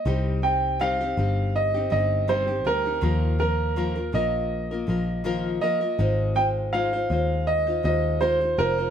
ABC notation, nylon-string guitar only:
X:1
M:4/4
L:1/16
Q:"Swing 16ths" 1/4=81
K:Cm
V:1 name="Nylon-string guitar"
[C,G,CEG]2 [G,CEG]2 [C,G,CEG] [CEG] [G,CEG]3 [CEG] [G,CEG]2 [C,G,CEG] [CEG] [G,CEG] [CEG] | [E,F,B,FB]2 [F,B,FB]2 [E,F,B,FB] [B,FB] [F,B,FB]3 [B,FB] [F,B,FB]2 [E,F,B,FB]2 [F,B,FB] [B,FB] | [A,EFc]2 [A,EFc]2 [A,EFc] [EFc] [A,EFc]3 [EFc] [A,EFc]2 [A,EFc] [EFc] [A,EFc] [EFc] |]